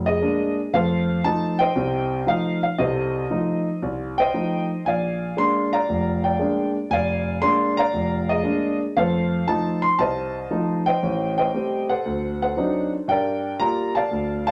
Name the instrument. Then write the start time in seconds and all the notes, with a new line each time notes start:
grand piano
Already playing: F1
0.06 G#4 D#5
0.22 G#3 A#3 D4
0.73 F2 A3 A4 C5 F5
1.24 F3 A3 D#4 A5
1.59 C5 D#5 G5
1.76 C2 C3
2.26 F3 A3 D#4 F5
2.63 F5
2.78 C2 C3 A4 C5 D#5
3.30 F3 A3 D#4
3.82 C2
4.18 C5 D#5 G5
4.34 F3 A3 D#4
4.85 A#1 D5 F5 G#5
5.37 G#3 A#3 D4 C6
5.73 D5 F5 A#5
5.89 F1
6.24 D5 G5
6.39 G#3 A#3 D4
6.90 F1 D5 F5 G#5
7.42 G#3 A#3 D4 C6
7.77 D5 F5 A#5
7.93 F1
8.29 G#4 D#5
8.44 G#3 A#3 D4
8.97 F2 A3 A4 C5 F5
9.47 F3 A3 D#4 A5
9.82 C6
9.99 C2 C5 D#5 A5
10.50 F3 A3 D#4
10.86 C5 D#5 G5
11.03 A1
11.38 C5 D#5 G5
11.54 G3 A3 C4
11.89 A4 C5 F#5
12.06 D2
12.42 A4 C5 F#5
12.56 F#3 C4 D4 D#4
13.08 G2 A#4 D5 G5
13.60 G3 A#3 F4 A#5
13.95 D5 F5 A5
14.11 D2
14.47 F5 A5